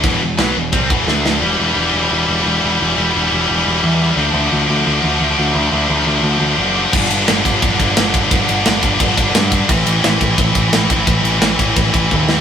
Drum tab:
CC |x-x-x---|--------|--------|--------|
RD |--------|--------|--------|--------|
SD |--o---oo|--------|--------|--------|
BD |o---oo--|--------|--------|--------|

CC |--------|x-------|--------|--------|
RD |--------|-xxxxxxx|xxxxxxxx|xxxxxxxx|
SD |--------|--o---o-|--o---o-|--o---o-|
BD |--------|o--ooo-o|o--ooo-o|o--ooo-o|

CC |--------|
RD |xxxxxx--|
SD |--o----o|
BD |o--oooo-|